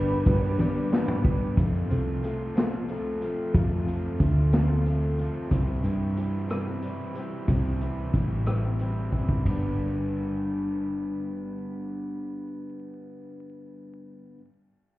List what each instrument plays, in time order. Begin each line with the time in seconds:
Already playing: picked electric bass G1, twelve-string acoustic guitar G3 B3 D4 B4, overdriven electric guitar G3 D4, grand piano D4 G4 B4 D5, clean electric guitar B4, accordion B4 G5 D6
0.25 picked electric bass G2, twelve-string acoustic guitar G3 B3 D4 B4, kick, ride, tambourine
0.58 twelve-string acoustic guitar G2 D3 G3 B3 D4 B4, grand piano D4 G4 B4 D5, high tom, tambourine
0.63 overdriven electric guitar D4
0.91 twelve-string acoustic guitar G3 B3 D4 B4, snare
1.08 mid tom
1.24 twelve-string acoustic guitar G3 B3 D4 B4, kick
1.43 tambourine
1.56 overdriven electric guitar F2 C3 A3, picked electric bass F2, twelve-string acoustic guitar F3 C4 F4 A4, kick, closed hi-hat
1.72 twelve-string acoustic guitar C4 F4 A4
1.89 picked electric bass C2, twelve-string acoustic guitar F3 C4 F4 A4, overdriven electric guitar A3, closed hi-hat
2.23 twelve-string acoustic guitar F3 C4 F4 A4, overdriven electric guitar A3, closed hi-hat
2.55 twelve-string acoustic guitar F3 C4 F4 A4, overdriven electric guitar A3, snare, closed hi-hat
2.59 overdriven electric guitar F3
2.71 twelve-string acoustic guitar C4 F4 A4
2.87 twelve-string acoustic guitar F3 C4 F4 A4, closed hi-hat
2.91 overdriven electric guitar A3 F4
3.20 twelve-string acoustic guitar F3 C4 F4 A4, closed hi-hat
3.26 overdriven electric guitar F3 A3 C4
3.52 picked electric bass F2, overdriven electric guitar F2 C3, twelve-string acoustic guitar F3 C4 F4 A4, kick, closed hi-hat
3.56 overdriven electric guitar F3 A3 C4 F4
3.69 twelve-string acoustic guitar C4 F4 A4
3.85 twelve-string acoustic guitar F3 C4 F4 A4, closed hi-hat
3.91 overdriven electric guitar F3 A3
4.18 picked electric bass D2, twelve-string acoustic guitar F3 C4 F4 A4, overdriven electric guitar A3, kick, closed hi-hat
4.51 twelve-string acoustic guitar F3 C4 F4 A4, overdriven electric guitar A3, snare, closed hi-hat
4.56 overdriven electric guitar F3
4.66 twelve-string acoustic guitar C4 F4 A4
4.84 twelve-string acoustic guitar F3 C4 F4 A4, overdriven electric guitar A3, closed hi-hat
5.17 twelve-string acoustic guitar F3 C4 F4 A4, overdriven electric guitar A3, closed hi-hat
5.49 picked electric bass C2, twelve-string acoustic guitar C3 G3 C4 E4 G4, overdriven electric guitar E3, kick, closed hi-hat
5.67 twelve-string acoustic guitar C4 E4 G4
5.82 picked electric bass G2, twelve-string acoustic guitar G3 C4 E4 G4, closed hi-hat
5.87 overdriven electric guitar G3
6.15 overdriven electric guitar E3, twelve-string acoustic guitar G3 C4 E4 G4, closed hi-hat
6.48 twelve-string acoustic guitar C3 G3 C4 E4 G4, cross-stick, closed hi-hat
6.53 overdriven electric guitar G3
6.65 twelve-string acoustic guitar C4 E4 G4
6.82 overdriven electric guitar E3, twelve-string acoustic guitar G3 C4 E4 G4, closed hi-hat
7.15 twelve-string acoustic guitar G3 C4 E4 G4, closed hi-hat
7.19 overdriven electric guitar G3
7.47 picked electric bass C2, twelve-string acoustic guitar C3 G3 C4 E4 G4, overdriven electric guitar E3, kick, closed hi-hat
7.65 twelve-string acoustic guitar C4 E4 G4
7.81 twelve-string acoustic guitar G3 C4 E4 G4, closed hi-hat
8.13 picked electric bass A1, overdriven electric guitar E3, twelve-string acoustic guitar G3 C4 E4 G4, kick, closed hi-hat
8.46 twelve-string acoustic guitar C3 G3 C4 E4 G4, cross-stick, closed hi-hat
8.64 twelve-string acoustic guitar C4 E4 G4
8.79 overdriven electric guitar E3, twelve-string acoustic guitar G3 C4 E4 G4, closed hi-hat
9.12 twelve-string acoustic guitar G3 C4 E4 G4, kick
9.29 kick
9.42 picked electric bass G1, twelve-string acoustic guitar G2 D3, kick, ride
9.48 twelve-string acoustic guitar G3 B3, overdriven electric guitar D4 B4
9.53 twelve-string acoustic guitar D4 G4